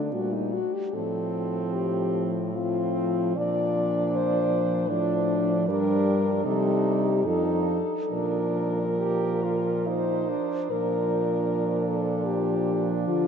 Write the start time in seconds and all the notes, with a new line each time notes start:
Already playing: D3 D4
0.13 A#2 G3 F#4
0.33 D#4
0.53 F#4
0.73 G4
0.94 A2 F3 C4 A4
1.73 G4
2.53 F3 C4 F4
3.36 A#2 F3 D4 D5
4.15 C5
4.88 A2 F3 D4
5.68 G2 G3 D4 A#4
6.44 C3 G3 D#4 A4
7.06 G4
7.23 F2 F3 D#4 A4
8.10 A#2 F3 D4 A#4
8.99 G4
9.44 F4
9.87 D#4 C5
10.29 D4
10.71 A#2 F3 D4 A#4
11.88 A4
12.26 G4
13.07 D3 F4